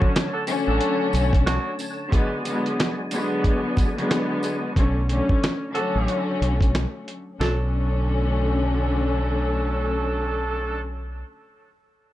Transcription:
Already playing: D3 F#3 A3 C#4 D4 F#4 C#5 A5
0.02 kick
0.16 snare, closed hi-hat
0.33 D4 F#4 A4
0.47 D3 F#3 A3 C#4, closed hi-hat, tambourine
0.68 A1 D4 F#4 A4
0.81 closed hi-hat
1.13 B1, closed hi-hat, tambourine
1.33 kick, closed hi-hat
1.47 F#3 D4 F#4, snare, closed hi-hat
1.79 closed hi-hat, tambourine
2.10 D3 F#3 G#3 B3 F#4 D5 G#5, kick, closed hi-hat
2.45 D3 F#3 G#3 B3, closed hi-hat, tambourine
2.66 closed hi-hat
2.80 snare, closed hi-hat
3.11 D3 F#3 G#3 B3, closed hi-hat, tambourine
3.44 kick, closed hi-hat
3.77 kick, closed hi-hat, tambourine
3.97 D3 F#3 G#3 B3, closed hi-hat
4.11 snare, closed hi-hat
4.43 closed hi-hat, tambourine
4.75 B1 D3 F#3 A3 C#4, kick, closed hi-hat
5.09 D3 F#3 A3 C#4, closed hi-hat
5.29 kick
5.44 snare, closed hi-hat
5.73 D3 F#3 A3 C#4 D4 F#4 A4, closed hi-hat
5.95 A1
6.08 closed hi-hat
6.41 B1, closed hi-hat
6.61 kick, closed hi-hat
6.75 snare, closed hi-hat
7.08 closed hi-hat
7.39 B1 D3 F#3 A3 C#4 D4 A4, snare

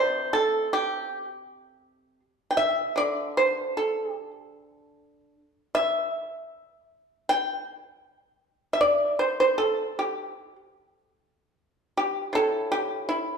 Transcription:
Already playing: C3 C5
0.33 A4
0.73 G4
2.51 G5
2.57 E5
2.96 D3 D5
3.37 C5
3.77 A4
4.11 G4
5.75 E5
7.29 G5
8.73 E5
8.81 D5
9.19 C5
9.40 C5
9.58 A4
9.99 G4
11.97 G4
12.33 A2 A4
12.72 G4
13.09 E4

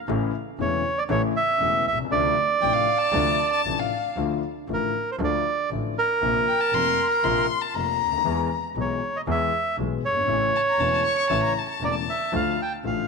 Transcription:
0.08 A1 A2 C#3 E3 A3 E4
0.59 E1 E2 C#3 E3 A3 E4 C#5
0.98 D5
1.09 A1 A2 C#3 E3 A3 E4 C#5
1.37 E5
1.60 E1 E2 C#3 E3 A3 E4
1.85 C2 E5
1.93 B1
1.99 C2
2.05 C#2
2.11 D2 C3 D3 F3 A3 D4 D5
2.62 A1 A2 C3 F3 A3 D4 G5
2.73 F5
2.98 A5
3.12 D2 C3 D3 F3 A3 D4
3.53 A5
3.65 A1 A2 C3 F3 A3 D4
3.79 F5
4.16 D2 D3 F3 A3 F4
4.68 A1 A2 D3 F3 A3 F4
4.73 A#4
5.11 C5
5.19 D2 D3 F3 A3 F4
5.24 D5
5.71 A1 A2 D3 F3 A3 F4
5.98 A#4
6.22 A#1 A#2 C3 F3 A#3 F4
6.48 G5
6.61 A5
6.72 F1 F2 C3 F3 A#3 F4 C6
7.10 A#5
7.24 A#1 A#2 C3 F3 A#3 F4 C6
7.61 A5
7.74 F1 F2 C3 F3 A#3 F4 A#5
8.01 D2
8.06 C#2
8.12 D2
8.18 D#2
8.25 E2 E3 G#3 B3 G#4
8.75 B1 B2 E3 G#3 B3 G#4
8.81 C#5
9.16 D#5
9.27 E2 E3 G#3 B3 G#4
9.31 E5
9.77 B1 B2 E3 G#3 B3 G#4
10.03 G1 C#5
10.11 F#1
10.16 G1
10.23 G#1
10.27 A1 A2 C#3 E3 A3 E4
10.56 A5
10.69 A#5
10.78 E1 E2 C#3 E3 A3 E4 A5
10.93 A5
11.05 C#6
11.18 C#6
11.30 A1 A2 C#3 E3 A3 E4 A5
11.43 A#5
11.59 A5
11.69 A5
11.81 E1 E2 C#3 E3 A3 E4 D5 A#5
11.95 A5
12.10 E5
12.33 D2 D3 F3 A3 F4 F5
12.62 G5
12.84 A1 A2 D3 F3 A3 F4 F5

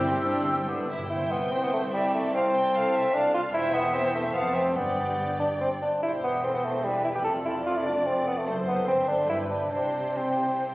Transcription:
Already playing: G1 G2 C3 G3 C4 E4 G4 E5 G5 E6
0.24 D4
0.45 C4
0.67 G2 D3 G3 B3 D4 D6
0.75 G2
0.83 G2
0.90 G2 E4
0.99 G2
1.10 C2 E4 C5 E5 G5
1.31 B3
1.51 C4 C5 E5
1.63 B3
1.73 A3
1.92 G3 D5 E5 G5
2.14 A3
2.33 C4 C5 F5 A5
2.55 G5
2.73 A4 F5
2.94 E5
3.13 D4 A4 F5 A5
3.34 F4
3.53 E1 E2 E4 C5 E5 G5
3.74 B3
3.93 C4 C5 E5 G5
4.05 B3
4.15 A3
4.33 F1 F2 B3 C5 F5 A5
4.54 C4 E5
4.74 G1 G2 B3 G4 D5 G5
5.39 D4
5.61 C4
5.82 D4
6.02 E1 E2 E4 G4 C5 G5
6.24 B3
6.44 C4 A4 C5
6.54 B3
6.64 A3
6.84 G3 G4 B4 E5
7.04 E4
7.15 G4
7.24 F1 F2 F4 A4 D5
7.45 E4
7.65 F4 A4 D5
7.76 E4
7.86 D4
8.06 C4 A4
8.27 B3
8.37 A3
8.46 F#1 F#2 A3 A4 C5
8.67 B3
8.87 G1 G2 C4 E5
9.08 D4
9.28 G1 G2 E4 G4 B4 G5
9.50 D4
9.71 C2 C3 D4 G4 C5 G5
10.16 C4

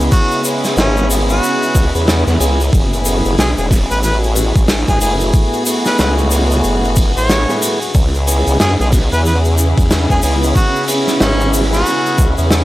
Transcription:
Already playing: C#2 C#3 G#3 B3 C#4 E4 G#4 E5
0.00 open hi-hat, shaker
0.12 F#4, kick, open hi-hat, shaker
0.31 open hi-hat, shaker
0.44 B3 C#4 E4 G#4, open hi-hat, shaker
0.64 snare, open hi-hat, shaker
0.77 G#1 C#4, snare, shaker
0.97 shaker
1.10 open hi-hat, shaker
1.30 F#4, open hi-hat, shaker
1.43 open hi-hat, shaker
1.62 open hi-hat, shaker
1.75 C#2, kick, open hi-hat, shaker
1.95 E2 B3 C#4 E4 G#4, open hi-hat, shaker
2.07 snare, open hi-hat, shaker
2.27 E2, snare, open hi-hat, shaker
2.40 C#2 B3 C#4 E4 G#4, open hi-hat, shaker
2.60 open hi-hat, shaker
2.73 F#1 A2 B3 F#4 G#4, kick, open hi-hat, shaker
2.93 open hi-hat, shaker
3.05 A3 B3 E4 G#4, open hi-hat, shaker
3.25 F#1, open hi-hat, shaker
3.38 B1 G#4, snare, open hi-hat, shaker
3.58 E1 G#4, open hi-hat, shaker
3.60 open hi-hat
3.64 open hi-hat
3.67 open hi-hat
3.69 kick, snare, open hi-hat
3.71 open hi-hat, shaker
3.91 A1 B4, open hi-hat, shaker
4.03 B4, open hi-hat, shaker
4.23 open hi-hat, shaker
4.35 open hi-hat, shaker
4.55 A1, kick, open hi-hat, shaker
4.68 snare, open hi-hat, shaker
4.88 A1 G#4, kick, open hi-hat, shaker
5.01 F#1 A3 B3 E4 G#4, open hi-hat, shaker
5.20 open hi-hat, shaker
5.33 F#4, kick, open hi-hat, shaker
5.53 open hi-hat, shaker
5.66 A3 B3 E4 G#4, open hi-hat, shaker
5.85 B4, snare, open hi-hat, shaker
5.99 C#2 B4, snare, open hi-hat, shaker
6.18 open hi-hat, shaker
6.31 open hi-hat, shaker
6.51 open hi-hat, shaker
6.64 F#1, open hi-hat, shaker
6.84 open hi-hat, shaker
6.96 kick, open hi-hat, shaker
7.17 A1 A3 B3 E4 G#4 C#5, open hi-hat, shaker
7.29 snare, open hi-hat, shaker
7.49 A3 B3 E4 G#4, snare, open hi-hat, shaker
7.56 open hi-hat
7.62 open hi-hat, shaker
7.72 open hi-hat
7.82 open hi-hat, shaker
7.95 C#2 C#3 C#4 E4 G#4, kick, open hi-hat, shaker
8.14 open hi-hat, shaker
8.27 B3 C#4 E4 G#4, open hi-hat, shaker
8.34 E5
8.46 C#2 G#4, open hi-hat, shaker
8.60 F#2 G#4, snare, open hi-hat, shaker
8.80 B1 G#4, open hi-hat, shaker
8.93 kick, snare, open hi-hat, shaker
9.12 E2 B4, open hi-hat, shaker
9.25 B4, open hi-hat, shaker
9.45 open hi-hat, shaker
9.58 shaker
9.78 E2, kick, open hi-hat, shaker
9.91 snare, open hi-hat, shaker
10.10 E2 G#4, kick, open hi-hat, shaker
10.22 C#2 B3 C#4 E4 G#4, open hi-hat, shaker
10.43 open hi-hat, shaker
10.56 C#4 F#4, kick, open hi-hat, shaker
10.75 open hi-hat, shaker
10.77 open hi-hat
10.79 open hi-hat
10.81 open hi-hat
10.83 open hi-hat
10.85 open hi-hat
10.86 open hi-hat
10.88 B3 C#4 E4 G#4, open hi-hat, shaker
11.07 snare, open hi-hat, shaker
11.20 G#1 C#4, snare, open hi-hat, shaker
11.40 open hi-hat, shaker
11.53 open hi-hat, shaker
11.59 snare
11.64 snare
11.72 F#4, snare, open hi-hat, shaker
11.75 snare
11.81 snare
11.86 open hi-hat, shaker
12.06 open hi-hat, shaker
12.18 C#2, kick, shaker
12.38 E2 B3 C#4 E4 G#4, open hi-hat, shaker
12.51 snare, open hi-hat, shaker

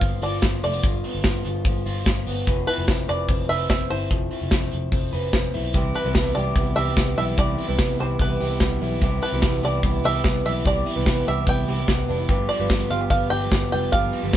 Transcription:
Already playing: G2 B3 F4 F5
0.01 G1 F3, kick, hi-hat pedal, open hi-hat
0.22 G1 F4 D5, hi-hat pedal, open hi-hat
0.42 G1 F3, kick, snare, open hi-hat
0.63 F1 A3 D5, hi-hat pedal, open hi-hat
0.73 B3
0.83 G1 G2 F4, kick, hi-hat pedal, open hi-hat
1.04 B3, hi-hat pedal, open hi-hat
1.15 G1
1.24 G1 F3, kick, snare, hi-hat pedal, open hi-hat
1.44 G1 F4, hi-hat pedal, open hi-hat
1.65 G1 F3, kick, hi-hat pedal, open hi-hat
1.86 G1 F4, hi-hat pedal, open hi-hat
2.06 G1 F3, kick, snare, hi-hat pedal, open hi-hat
2.27 G1 B3, hi-hat pedal, open hi-hat
2.47 F1 F3 B4, kick, hi-hat pedal, open hi-hat
2.67 E4 B4, hi-hat pedal, open hi-hat
2.78 F1
2.88 F1 C4, kick, snare, hi-hat pedal, open hi-hat
3.08 F1 B4 D5, hi-hat pedal, open hi-hat
3.28 F1 C4, kick, hi-hat pedal, open hi-hat
3.49 F1 B4 E5, hi-hat pedal, open hi-hat
3.69 F1 C4 E5, kick, snare, hi-hat pedal, open hi-hat
3.90 G1 E4 C5, hi-hat pedal, open hi-hat
4.11 F1 F3, kick, hi-hat pedal, open hi-hat
4.31 E4, hi-hat pedal, open hi-hat
4.42 F1
4.51 F1 C4, kick, snare, hi-hat pedal, open hi-hat
4.71 F1, hi-hat pedal, open hi-hat
4.92 F1 C4, kick, hi-hat pedal, open hi-hat
5.12 F1 B4, hi-hat pedal, open hi-hat
5.33 F1 C4, kick, snare, hi-hat pedal, open hi-hat
5.53 B1 E4, hi-hat pedal, open hi-hat
5.74 C2 C3 E3 G3 B3 E4 G4, kick, hi-hat pedal, open hi-hat
5.94 E4 B4, hi-hat pedal, open hi-hat
6.05 C2 C3 E3 G3 B3 E4
6.15 C2 B3, kick, snare, hi-hat pedal, open hi-hat
6.35 C2 E3 G3 B3 E4 G4 D5, hi-hat pedal, open hi-hat
6.55 C2 E3 G3 B3 E4, kick, hi-hat pedal, open hi-hat
6.76 C2 G4 E5, hi-hat pedal, open hi-hat
6.86 G3 B3 E4
6.97 C2 B3, kick, snare, hi-hat pedal, open hi-hat
7.17 B1 E3 G3 B3 E4 E5, hi-hat pedal, open hi-hat
7.37 C2 C3 E3 G3 B3 E4 G4 D5, kick, hi-hat pedal, open hi-hat
7.58 E4, hi-hat pedal, open hi-hat
7.67 C2 C3 E3 G3 B3 E4
7.79 C2 B3, kick, snare, hi-hat pedal, open hi-hat
7.98 C2 E3 G3 B3 E4 G4 C5, hi-hat pedal, open hi-hat
8.18 C2 E3 G3 B3 E4 B4, kick, hi-hat pedal, open hi-hat
8.40 C2 G4, hi-hat pedal, open hi-hat
8.49 G3 B3 E4
8.60 C2 B3, kick, snare, hi-hat pedal, open hi-hat
8.80 B1 E3 G3 B3 E4, hi-hat pedal, open hi-hat
9.01 C2 C3 E3 G3 B3 E4 G4, kick, hi-hat pedal, open hi-hat
9.22 E4 B4, hi-hat pedal, open hi-hat
9.33 C2 C3 E3 G3 B3 E4
9.42 C2 B3, kick, snare, hi-hat pedal, open hi-hat
9.62 C2 E3 G3 B3 E4 G4 D5, hi-hat pedal, open hi-hat
9.83 C2 E3 G3 B3 E4, kick, hi-hat pedal, open hi-hat
10.04 C2 G4 E5, hi-hat pedal, open hi-hat
10.14 G3 B3 E4
10.24 C2 B3, kick, snare, hi-hat pedal, open hi-hat
10.45 B1 E3 G3 B3 E4 E5, hi-hat pedal, open hi-hat
10.65 C2 C3 E3 G3 B3 E4 G4 D5, kick, hi-hat pedal, open hi-hat
10.86 E4, hi-hat pedal, open hi-hat
10.96 C2 C3 E3 G3 B3 E4
11.06 C2 B3, kick, snare, hi-hat pedal, open hi-hat
11.26 C2 E3 G3 B3 E4 G4 E5, hi-hat pedal, open hi-hat
11.46 C2 E3 G3 B3 E4 G5, kick, hi-hat pedal, open hi-hat
11.67 C2 G4, hi-hat pedal, open hi-hat
11.77 G3 B3 E4
11.88 C2 B3, kick, snare, hi-hat pedal, open hi-hat
12.08 F1 E3 G3 B3 D4 E4, hi-hat pedal, open hi-hat
12.19 E4
12.28 G1 G2 F3 G3 B3 G4, kick, hi-hat pedal, open hi-hat
12.49 F4 D5, hi-hat pedal, open hi-hat
12.59 G1 G2 D3 F3 G3 B3 G4
12.70 G1 B3, kick, snare, hi-hat pedal, open hi-hat
12.90 G1 F3 G3 B3 F4 G4 F5, hi-hat pedal, open hi-hat
13.01 G4
13.10 G1 F3 G3 B3 G4 F5, kick, hi-hat pedal, open hi-hat
13.30 G1 G4 G5, hi-hat pedal, open hi-hat
13.41 F3 G3 B3 G4
13.51 G1 B3, kick, snare, hi-hat pedal, open hi-hat
13.71 F1 F3 G3 B3 F4 G4 G5, hi-hat pedal, open hi-hat
13.92 G1 G2 F3 G3 B3 G4 F5, kick, hi-hat pedal, open hi-hat
14.13 F4, hi-hat pedal, open hi-hat
14.22 G1 G2 D3 F3 G3 B3 G4
14.33 kick, snare

